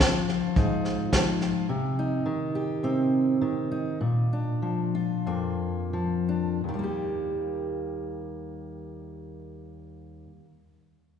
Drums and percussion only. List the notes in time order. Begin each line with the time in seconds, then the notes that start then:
0.00 kick, snare
0.29 snare
0.56 kick, snare
0.85 snare
1.13 kick, snare
1.41 snare